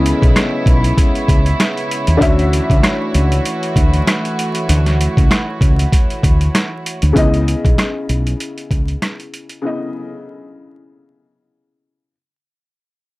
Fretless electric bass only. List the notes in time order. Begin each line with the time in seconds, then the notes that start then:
Already playing: C#2
0.23 B1
0.66 B1
1.29 C#2
2.08 D#2
2.21 D2
2.70 C#2
3.14 C#2
3.76 D2
4.69 D2
5.17 C#2
5.61 C#2
6.24 D2
7.02 D2
7.16 C#2
7.65 B1
8.09 B1
8.71 C#2